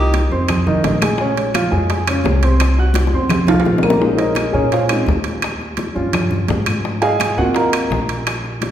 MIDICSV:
0, 0, Header, 1, 5, 480
1, 0, Start_track
1, 0, Key_signature, -5, "minor"
1, 0, Tempo, 353774
1, 1615, Time_signature, 4, 2, 24, 8
1, 11820, End_track
2, 0, Start_track
2, 0, Title_t, "Grand piano"
2, 0, Program_c, 0, 0
2, 0, Note_on_c, 0, 63, 75
2, 0, Note_on_c, 0, 75, 74
2, 0, Note_on_c, 0, 87, 74
2, 335, Note_off_c, 0, 63, 0
2, 340, Note_off_c, 0, 75, 0
2, 344, Note_off_c, 0, 87, 0
2, 420, Note_on_c, 0, 60, 74
2, 432, Note_on_c, 0, 72, 80
2, 432, Note_on_c, 0, 84, 73
2, 812, Note_off_c, 0, 60, 0
2, 818, Note_off_c, 0, 84, 0
2, 819, Note_off_c, 0, 72, 0
2, 904, Note_on_c, 0, 51, 82
2, 909, Note_on_c, 0, 63, 90
2, 914, Note_on_c, 0, 75, 84
2, 1293, Note_off_c, 0, 51, 0
2, 1296, Note_off_c, 0, 63, 0
2, 1299, Note_off_c, 0, 75, 0
2, 1386, Note_on_c, 0, 56, 69
2, 1391, Note_on_c, 0, 68, 75
2, 1393, Note_on_c, 0, 80, 78
2, 1578, Note_off_c, 0, 56, 0
2, 1581, Note_off_c, 0, 68, 0
2, 1582, Note_off_c, 0, 80, 0
2, 1635, Note_on_c, 0, 49, 82
2, 1635, Note_on_c, 0, 61, 86
2, 1638, Note_on_c, 0, 73, 79
2, 2019, Note_off_c, 0, 49, 0
2, 2019, Note_off_c, 0, 61, 0
2, 2021, Note_off_c, 0, 73, 0
2, 2096, Note_on_c, 0, 53, 72
2, 2100, Note_on_c, 0, 77, 72
2, 2102, Note_on_c, 0, 65, 74
2, 2291, Note_off_c, 0, 53, 0
2, 2293, Note_off_c, 0, 77, 0
2, 2294, Note_off_c, 0, 65, 0
2, 2328, Note_on_c, 0, 80, 73
2, 2331, Note_on_c, 0, 56, 73
2, 2337, Note_on_c, 0, 68, 72
2, 2722, Note_off_c, 0, 80, 0
2, 2724, Note_off_c, 0, 56, 0
2, 2728, Note_off_c, 0, 68, 0
2, 2823, Note_on_c, 0, 61, 85
2, 2829, Note_on_c, 0, 49, 90
2, 2830, Note_on_c, 0, 73, 86
2, 3211, Note_off_c, 0, 61, 0
2, 3214, Note_off_c, 0, 49, 0
2, 3215, Note_off_c, 0, 73, 0
2, 3295, Note_on_c, 0, 60, 79
2, 3304, Note_on_c, 0, 72, 74
2, 3311, Note_on_c, 0, 84, 72
2, 3685, Note_off_c, 0, 60, 0
2, 3691, Note_off_c, 0, 72, 0
2, 3695, Note_off_c, 0, 84, 0
2, 3789, Note_on_c, 0, 66, 79
2, 3790, Note_on_c, 0, 90, 73
2, 3791, Note_on_c, 0, 78, 74
2, 4173, Note_off_c, 0, 66, 0
2, 4174, Note_off_c, 0, 90, 0
2, 4175, Note_off_c, 0, 78, 0
2, 4261, Note_on_c, 0, 60, 70
2, 4261, Note_on_c, 0, 72, 68
2, 4267, Note_on_c, 0, 84, 78
2, 4649, Note_off_c, 0, 60, 0
2, 4649, Note_off_c, 0, 72, 0
2, 4652, Note_off_c, 0, 84, 0
2, 4717, Note_on_c, 0, 53, 85
2, 4722, Note_on_c, 0, 65, 83
2, 4726, Note_on_c, 0, 77, 77
2, 5114, Note_off_c, 0, 53, 0
2, 5118, Note_off_c, 0, 65, 0
2, 5120, Note_off_c, 0, 77, 0
2, 5192, Note_on_c, 0, 58, 77
2, 5195, Note_on_c, 0, 70, 76
2, 5209, Note_on_c, 0, 82, 69
2, 5395, Note_off_c, 0, 58, 0
2, 5397, Note_off_c, 0, 70, 0
2, 5405, Note_off_c, 0, 82, 0
2, 5416, Note_on_c, 0, 56, 55
2, 5422, Note_on_c, 0, 58, 49
2, 5430, Note_on_c, 0, 61, 52
2, 5430, Note_on_c, 0, 63, 54
2, 5647, Note_off_c, 0, 63, 0
2, 5661, Note_on_c, 0, 72, 53
2, 5666, Note_on_c, 0, 75, 75
2, 5667, Note_on_c, 0, 63, 59
2, 5670, Note_on_c, 0, 70, 57
2, 6120, Note_off_c, 0, 72, 0
2, 6122, Note_off_c, 0, 75, 0
2, 6123, Note_off_c, 0, 63, 0
2, 6124, Note_off_c, 0, 70, 0
2, 6134, Note_off_c, 0, 61, 0
2, 6148, Note_on_c, 0, 68, 62
2, 6149, Note_on_c, 0, 73, 71
2, 6154, Note_on_c, 0, 61, 66
2, 6157, Note_on_c, 0, 70, 61
2, 6390, Note_off_c, 0, 68, 0
2, 6391, Note_off_c, 0, 73, 0
2, 6393, Note_off_c, 0, 61, 0
2, 6395, Note_off_c, 0, 70, 0
2, 6412, Note_on_c, 0, 77, 62
2, 6415, Note_on_c, 0, 72, 53
2, 6416, Note_on_c, 0, 73, 48
2, 6417, Note_on_c, 0, 65, 52
2, 6628, Note_off_c, 0, 56, 0
2, 6648, Note_on_c, 0, 63, 52
2, 6649, Note_on_c, 0, 56, 45
2, 6649, Note_on_c, 0, 60, 44
2, 6649, Note_on_c, 0, 61, 42
2, 6856, Note_off_c, 0, 77, 0
2, 6858, Note_off_c, 0, 72, 0
2, 6859, Note_off_c, 0, 65, 0
2, 6859, Note_off_c, 0, 73, 0
2, 6864, Note_off_c, 0, 56, 0
2, 6864, Note_off_c, 0, 63, 0
2, 6865, Note_off_c, 0, 60, 0
2, 6865, Note_off_c, 0, 61, 0
2, 7302, Note_off_c, 0, 58, 0
2, 8065, Note_on_c, 0, 55, 50
2, 8072, Note_on_c, 0, 61, 52
2, 8083, Note_on_c, 0, 65, 61
2, 9226, Note_off_c, 0, 55, 0
2, 9230, Note_off_c, 0, 61, 0
2, 9235, Note_off_c, 0, 65, 0
2, 9521, Note_on_c, 0, 80, 97
2, 9527, Note_on_c, 0, 75, 70
2, 9528, Note_on_c, 0, 68, 82
2, 9528, Note_on_c, 0, 77, 74
2, 9974, Note_off_c, 0, 80, 0
2, 9978, Note_off_c, 0, 68, 0
2, 9978, Note_off_c, 0, 75, 0
2, 9978, Note_off_c, 0, 77, 0
2, 10000, Note_on_c, 0, 58, 55
2, 10008, Note_on_c, 0, 60, 50
2, 10012, Note_on_c, 0, 78, 89
2, 10018, Note_on_c, 0, 66, 73
2, 10022, Note_on_c, 0, 65, 56
2, 10247, Note_off_c, 0, 78, 0
2, 10250, Note_off_c, 0, 66, 0
2, 10255, Note_on_c, 0, 82, 71
2, 10259, Note_on_c, 0, 70, 61
2, 10261, Note_on_c, 0, 75, 61
2, 10267, Note_on_c, 0, 77, 60
2, 10693, Note_off_c, 0, 58, 0
2, 10698, Note_off_c, 0, 60, 0
2, 10703, Note_off_c, 0, 82, 0
2, 10705, Note_off_c, 0, 65, 0
2, 10706, Note_off_c, 0, 70, 0
2, 10706, Note_off_c, 0, 75, 0
2, 10710, Note_off_c, 0, 77, 0
2, 11820, End_track
3, 0, Start_track
3, 0, Title_t, "Tenor saxophone"
3, 0, Program_c, 1, 66
3, 0, Note_on_c, 1, 67, 100
3, 411, Note_off_c, 1, 67, 0
3, 11820, End_track
4, 0, Start_track
4, 0, Title_t, "Upright bass"
4, 0, Program_c, 2, 32
4, 0, Note_on_c, 2, 36, 87
4, 342, Note_off_c, 2, 36, 0
4, 426, Note_on_c, 2, 41, 90
4, 867, Note_off_c, 2, 41, 0
4, 906, Note_on_c, 2, 36, 70
4, 1124, Note_off_c, 2, 36, 0
4, 1134, Note_on_c, 2, 34, 87
4, 2253, Note_off_c, 2, 34, 0
4, 2330, Note_on_c, 2, 41, 96
4, 2998, Note_off_c, 2, 41, 0
4, 3043, Note_on_c, 2, 36, 92
4, 4166, Note_off_c, 2, 36, 0
4, 4241, Note_on_c, 2, 41, 85
4, 4690, Note_off_c, 2, 41, 0
4, 4717, Note_on_c, 2, 36, 71
4, 4945, Note_off_c, 2, 36, 0
4, 4962, Note_on_c, 2, 34, 83
4, 6086, Note_off_c, 2, 34, 0
4, 6158, Note_on_c, 2, 46, 88
4, 6832, Note_off_c, 2, 46, 0
4, 6880, Note_on_c, 2, 39, 86
4, 8008, Note_off_c, 2, 39, 0
4, 8085, Note_on_c, 2, 43, 90
4, 8758, Note_off_c, 2, 43, 0
4, 8804, Note_on_c, 2, 44, 89
4, 9933, Note_off_c, 2, 44, 0
4, 10007, Note_on_c, 2, 39, 92
4, 10683, Note_off_c, 2, 39, 0
4, 10715, Note_on_c, 2, 34, 93
4, 11820, Note_off_c, 2, 34, 0
4, 11820, End_track
5, 0, Start_track
5, 0, Title_t, "Drums"
5, 183, Note_on_c, 9, 60, 58
5, 184, Note_on_c, 9, 63, 89
5, 187, Note_on_c, 9, 65, 69
5, 319, Note_off_c, 9, 60, 0
5, 320, Note_off_c, 9, 63, 0
5, 323, Note_off_c, 9, 65, 0
5, 424, Note_on_c, 9, 60, 34
5, 432, Note_on_c, 9, 63, 34
5, 560, Note_off_c, 9, 60, 0
5, 568, Note_off_c, 9, 63, 0
5, 658, Note_on_c, 9, 65, 76
5, 659, Note_on_c, 9, 75, 58
5, 666, Note_on_c, 9, 60, 68
5, 679, Note_on_c, 9, 63, 35
5, 679, Note_on_c, 9, 64, 75
5, 793, Note_off_c, 9, 65, 0
5, 795, Note_off_c, 9, 75, 0
5, 802, Note_off_c, 9, 60, 0
5, 814, Note_off_c, 9, 63, 0
5, 814, Note_off_c, 9, 64, 0
5, 904, Note_on_c, 9, 60, 32
5, 906, Note_on_c, 9, 63, 32
5, 906, Note_on_c, 9, 64, 66
5, 1040, Note_off_c, 9, 60, 0
5, 1042, Note_off_c, 9, 63, 0
5, 1042, Note_off_c, 9, 64, 0
5, 1141, Note_on_c, 9, 60, 60
5, 1141, Note_on_c, 9, 61, 79
5, 1142, Note_on_c, 9, 65, 68
5, 1144, Note_on_c, 9, 63, 77
5, 1276, Note_off_c, 9, 60, 0
5, 1276, Note_off_c, 9, 61, 0
5, 1278, Note_off_c, 9, 65, 0
5, 1280, Note_off_c, 9, 63, 0
5, 1379, Note_on_c, 9, 63, 80
5, 1379, Note_on_c, 9, 75, 65
5, 1385, Note_on_c, 9, 65, 90
5, 1515, Note_off_c, 9, 63, 0
5, 1515, Note_off_c, 9, 75, 0
5, 1521, Note_off_c, 9, 65, 0
5, 1603, Note_on_c, 9, 60, 67
5, 1623, Note_on_c, 9, 63, 33
5, 1739, Note_off_c, 9, 60, 0
5, 1759, Note_off_c, 9, 63, 0
5, 1859, Note_on_c, 9, 63, 29
5, 1861, Note_on_c, 9, 60, 33
5, 1865, Note_on_c, 9, 65, 61
5, 1995, Note_off_c, 9, 63, 0
5, 1997, Note_off_c, 9, 60, 0
5, 2000, Note_off_c, 9, 65, 0
5, 2096, Note_on_c, 9, 63, 89
5, 2096, Note_on_c, 9, 75, 63
5, 2100, Note_on_c, 9, 60, 56
5, 2101, Note_on_c, 9, 65, 92
5, 2231, Note_off_c, 9, 75, 0
5, 2232, Note_off_c, 9, 63, 0
5, 2235, Note_off_c, 9, 60, 0
5, 2237, Note_off_c, 9, 65, 0
5, 2332, Note_on_c, 9, 60, 36
5, 2468, Note_off_c, 9, 60, 0
5, 2574, Note_on_c, 9, 65, 65
5, 2580, Note_on_c, 9, 63, 34
5, 2582, Note_on_c, 9, 60, 66
5, 2710, Note_off_c, 9, 65, 0
5, 2716, Note_off_c, 9, 63, 0
5, 2718, Note_off_c, 9, 60, 0
5, 2805, Note_on_c, 9, 63, 35
5, 2815, Note_on_c, 9, 65, 96
5, 2815, Note_on_c, 9, 75, 65
5, 2818, Note_on_c, 9, 60, 32
5, 2941, Note_off_c, 9, 63, 0
5, 2951, Note_off_c, 9, 65, 0
5, 2951, Note_off_c, 9, 75, 0
5, 2954, Note_off_c, 9, 60, 0
5, 3036, Note_on_c, 9, 63, 78
5, 3056, Note_on_c, 9, 66, 64
5, 3062, Note_on_c, 9, 60, 67
5, 3062, Note_on_c, 9, 61, 86
5, 3171, Note_off_c, 9, 63, 0
5, 3192, Note_off_c, 9, 66, 0
5, 3198, Note_off_c, 9, 60, 0
5, 3198, Note_off_c, 9, 61, 0
5, 3293, Note_on_c, 9, 63, 30
5, 3293, Note_on_c, 9, 65, 66
5, 3429, Note_off_c, 9, 63, 0
5, 3429, Note_off_c, 9, 65, 0
5, 3528, Note_on_c, 9, 63, 31
5, 3528, Note_on_c, 9, 65, 93
5, 3528, Note_on_c, 9, 75, 60
5, 3546, Note_on_c, 9, 60, 69
5, 3664, Note_off_c, 9, 63, 0
5, 3664, Note_off_c, 9, 65, 0
5, 3664, Note_off_c, 9, 75, 0
5, 3682, Note_off_c, 9, 60, 0
5, 3761, Note_on_c, 9, 63, 34
5, 3779, Note_on_c, 9, 60, 35
5, 3896, Note_off_c, 9, 63, 0
5, 3914, Note_off_c, 9, 60, 0
5, 3989, Note_on_c, 9, 63, 99
5, 4007, Note_on_c, 9, 65, 68
5, 4013, Note_on_c, 9, 60, 89
5, 4125, Note_off_c, 9, 63, 0
5, 4142, Note_off_c, 9, 65, 0
5, 4149, Note_off_c, 9, 60, 0
5, 4169, Note_on_c, 9, 60, 70
5, 4233, Note_on_c, 9, 63, 32
5, 4304, Note_off_c, 9, 60, 0
5, 4369, Note_off_c, 9, 63, 0
5, 4469, Note_on_c, 9, 63, 35
5, 4469, Note_on_c, 9, 64, 80
5, 4472, Note_on_c, 9, 75, 59
5, 4482, Note_on_c, 9, 65, 76
5, 4486, Note_on_c, 9, 61, 94
5, 4604, Note_off_c, 9, 63, 0
5, 4604, Note_off_c, 9, 64, 0
5, 4608, Note_off_c, 9, 75, 0
5, 4617, Note_off_c, 9, 65, 0
5, 4622, Note_off_c, 9, 61, 0
5, 4708, Note_on_c, 9, 63, 31
5, 4708, Note_on_c, 9, 64, 71
5, 4725, Note_on_c, 9, 65, 86
5, 4803, Note_on_c, 9, 61, 69
5, 4844, Note_off_c, 9, 63, 0
5, 4844, Note_off_c, 9, 64, 0
5, 4861, Note_off_c, 9, 65, 0
5, 4880, Note_on_c, 9, 65, 73
5, 4939, Note_off_c, 9, 61, 0
5, 4957, Note_on_c, 9, 63, 76
5, 4969, Note_on_c, 9, 61, 78
5, 5016, Note_off_c, 9, 65, 0
5, 5093, Note_off_c, 9, 63, 0
5, 5105, Note_off_c, 9, 61, 0
5, 5133, Note_on_c, 9, 61, 96
5, 5195, Note_on_c, 9, 66, 72
5, 5197, Note_on_c, 9, 63, 82
5, 5197, Note_on_c, 9, 75, 62
5, 5268, Note_off_c, 9, 61, 0
5, 5294, Note_on_c, 9, 61, 96
5, 5331, Note_off_c, 9, 66, 0
5, 5333, Note_off_c, 9, 63, 0
5, 5333, Note_off_c, 9, 75, 0
5, 5430, Note_off_c, 9, 61, 0
5, 5433, Note_on_c, 9, 63, 29
5, 5449, Note_on_c, 9, 60, 62
5, 5569, Note_off_c, 9, 63, 0
5, 5585, Note_off_c, 9, 60, 0
5, 5678, Note_on_c, 9, 65, 58
5, 5679, Note_on_c, 9, 63, 29
5, 5705, Note_on_c, 9, 60, 32
5, 5814, Note_off_c, 9, 65, 0
5, 5815, Note_off_c, 9, 63, 0
5, 5841, Note_off_c, 9, 60, 0
5, 5903, Note_on_c, 9, 63, 96
5, 5919, Note_on_c, 9, 65, 83
5, 5923, Note_on_c, 9, 75, 63
5, 5935, Note_on_c, 9, 60, 57
5, 6039, Note_off_c, 9, 63, 0
5, 6054, Note_off_c, 9, 65, 0
5, 6059, Note_off_c, 9, 75, 0
5, 6071, Note_off_c, 9, 60, 0
5, 6153, Note_on_c, 9, 63, 32
5, 6172, Note_on_c, 9, 60, 34
5, 6289, Note_off_c, 9, 63, 0
5, 6307, Note_off_c, 9, 60, 0
5, 6394, Note_on_c, 9, 63, 34
5, 6404, Note_on_c, 9, 65, 60
5, 6427, Note_on_c, 9, 60, 59
5, 6530, Note_off_c, 9, 63, 0
5, 6540, Note_off_c, 9, 65, 0
5, 6563, Note_off_c, 9, 60, 0
5, 6638, Note_on_c, 9, 65, 90
5, 6639, Note_on_c, 9, 63, 31
5, 6639, Note_on_c, 9, 75, 62
5, 6659, Note_on_c, 9, 60, 35
5, 6774, Note_off_c, 9, 65, 0
5, 6775, Note_off_c, 9, 63, 0
5, 6775, Note_off_c, 9, 75, 0
5, 6794, Note_off_c, 9, 60, 0
5, 6872, Note_on_c, 9, 63, 81
5, 6901, Note_on_c, 9, 60, 63
5, 6901, Note_on_c, 9, 61, 76
5, 7008, Note_off_c, 9, 63, 0
5, 7036, Note_off_c, 9, 60, 0
5, 7036, Note_off_c, 9, 61, 0
5, 7109, Note_on_c, 9, 65, 61
5, 7126, Note_on_c, 9, 63, 29
5, 7245, Note_off_c, 9, 65, 0
5, 7262, Note_off_c, 9, 63, 0
5, 7358, Note_on_c, 9, 65, 85
5, 7359, Note_on_c, 9, 63, 31
5, 7359, Note_on_c, 9, 75, 64
5, 7384, Note_on_c, 9, 60, 64
5, 7494, Note_off_c, 9, 65, 0
5, 7495, Note_off_c, 9, 63, 0
5, 7495, Note_off_c, 9, 75, 0
5, 7520, Note_off_c, 9, 60, 0
5, 7597, Note_on_c, 9, 63, 29
5, 7615, Note_on_c, 9, 60, 30
5, 7732, Note_off_c, 9, 63, 0
5, 7751, Note_off_c, 9, 60, 0
5, 7828, Note_on_c, 9, 65, 66
5, 7836, Note_on_c, 9, 63, 88
5, 7855, Note_on_c, 9, 60, 51
5, 7964, Note_off_c, 9, 65, 0
5, 7972, Note_off_c, 9, 63, 0
5, 7991, Note_off_c, 9, 60, 0
5, 8076, Note_on_c, 9, 63, 34
5, 8102, Note_on_c, 9, 60, 34
5, 8211, Note_off_c, 9, 63, 0
5, 8238, Note_off_c, 9, 60, 0
5, 8321, Note_on_c, 9, 63, 33
5, 8321, Note_on_c, 9, 64, 77
5, 8321, Note_on_c, 9, 65, 82
5, 8334, Note_on_c, 9, 75, 59
5, 8337, Note_on_c, 9, 60, 64
5, 8456, Note_off_c, 9, 65, 0
5, 8457, Note_off_c, 9, 63, 0
5, 8457, Note_off_c, 9, 64, 0
5, 8470, Note_off_c, 9, 75, 0
5, 8473, Note_off_c, 9, 60, 0
5, 8557, Note_on_c, 9, 63, 30
5, 8557, Note_on_c, 9, 64, 72
5, 8589, Note_on_c, 9, 60, 30
5, 8692, Note_off_c, 9, 63, 0
5, 8692, Note_off_c, 9, 64, 0
5, 8725, Note_off_c, 9, 60, 0
5, 8796, Note_on_c, 9, 63, 84
5, 8798, Note_on_c, 9, 65, 57
5, 8798, Note_on_c, 9, 66, 63
5, 8824, Note_on_c, 9, 60, 63
5, 8824, Note_on_c, 9, 61, 76
5, 8932, Note_off_c, 9, 63, 0
5, 8934, Note_off_c, 9, 65, 0
5, 8934, Note_off_c, 9, 66, 0
5, 8959, Note_off_c, 9, 60, 0
5, 8959, Note_off_c, 9, 61, 0
5, 9041, Note_on_c, 9, 65, 87
5, 9050, Note_on_c, 9, 75, 63
5, 9052, Note_on_c, 9, 63, 77
5, 9176, Note_off_c, 9, 65, 0
5, 9185, Note_off_c, 9, 75, 0
5, 9188, Note_off_c, 9, 63, 0
5, 9294, Note_on_c, 9, 63, 30
5, 9295, Note_on_c, 9, 60, 64
5, 9430, Note_off_c, 9, 60, 0
5, 9430, Note_off_c, 9, 63, 0
5, 9523, Note_on_c, 9, 65, 63
5, 9528, Note_on_c, 9, 60, 35
5, 9659, Note_off_c, 9, 65, 0
5, 9663, Note_off_c, 9, 60, 0
5, 9767, Note_on_c, 9, 60, 52
5, 9768, Note_on_c, 9, 63, 94
5, 9772, Note_on_c, 9, 75, 64
5, 9780, Note_on_c, 9, 65, 88
5, 9903, Note_off_c, 9, 60, 0
5, 9903, Note_off_c, 9, 63, 0
5, 9908, Note_off_c, 9, 75, 0
5, 9916, Note_off_c, 9, 65, 0
5, 10006, Note_on_c, 9, 63, 35
5, 10008, Note_on_c, 9, 60, 35
5, 10142, Note_off_c, 9, 63, 0
5, 10143, Note_off_c, 9, 60, 0
5, 10237, Note_on_c, 9, 60, 64
5, 10250, Note_on_c, 9, 63, 33
5, 10256, Note_on_c, 9, 65, 60
5, 10373, Note_off_c, 9, 60, 0
5, 10386, Note_off_c, 9, 63, 0
5, 10391, Note_off_c, 9, 65, 0
5, 10490, Note_on_c, 9, 65, 97
5, 10490, Note_on_c, 9, 75, 62
5, 10492, Note_on_c, 9, 63, 33
5, 10498, Note_on_c, 9, 60, 34
5, 10625, Note_off_c, 9, 65, 0
5, 10626, Note_off_c, 9, 75, 0
5, 10628, Note_off_c, 9, 63, 0
5, 10634, Note_off_c, 9, 60, 0
5, 10725, Note_on_c, 9, 63, 72
5, 10743, Note_on_c, 9, 60, 69
5, 10743, Note_on_c, 9, 61, 77
5, 10861, Note_off_c, 9, 63, 0
5, 10879, Note_off_c, 9, 60, 0
5, 10879, Note_off_c, 9, 61, 0
5, 10968, Note_on_c, 9, 63, 31
5, 10978, Note_on_c, 9, 65, 69
5, 11104, Note_off_c, 9, 63, 0
5, 11114, Note_off_c, 9, 65, 0
5, 11217, Note_on_c, 9, 75, 63
5, 11218, Note_on_c, 9, 65, 87
5, 11221, Note_on_c, 9, 63, 32
5, 11225, Note_on_c, 9, 60, 71
5, 11352, Note_off_c, 9, 75, 0
5, 11354, Note_off_c, 9, 65, 0
5, 11356, Note_off_c, 9, 63, 0
5, 11360, Note_off_c, 9, 60, 0
5, 11455, Note_on_c, 9, 63, 30
5, 11463, Note_on_c, 9, 60, 32
5, 11590, Note_off_c, 9, 63, 0
5, 11598, Note_off_c, 9, 60, 0
5, 11689, Note_on_c, 9, 63, 83
5, 11693, Note_on_c, 9, 65, 64
5, 11706, Note_on_c, 9, 60, 53
5, 11820, Note_off_c, 9, 60, 0
5, 11820, Note_off_c, 9, 63, 0
5, 11820, Note_off_c, 9, 65, 0
5, 11820, End_track
0, 0, End_of_file